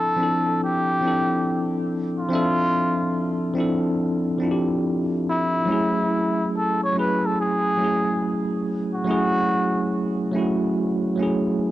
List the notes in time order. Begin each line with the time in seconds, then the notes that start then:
Already playing: F3 C4 D4 E4 A4
0.16 F3 C4 D4
0.21 E4 A4
0.64 G4
1.01 F3 C4 D4
1.06 E4 A4
2.19 F4
2.29 F3 C4 D4
2.33 A4 E5
3.54 F3 C4 D4
3.58 E4 A4
4.38 F3 C4 D4
4.43 E4 F4
4.51 G4
5.29 E4
5.65 F#3 A3 C#4
5.71 E4 G#4
6.56 A4
6.84 C#5
6.92 F#3 A3 C#4
6.97 E4 G#4 B4
7.26 A4
7.41 G#4
7.77 F#3 A3 C#4
7.82 E4 G#4
8.94 F#4
9.04 F#3 A3 C#4
9.09 E4 G#4
10.32 F#3 A3 C#4
10.36 E4 F#4
11.16 F#3 A3 C#4
11.21 E4 G#4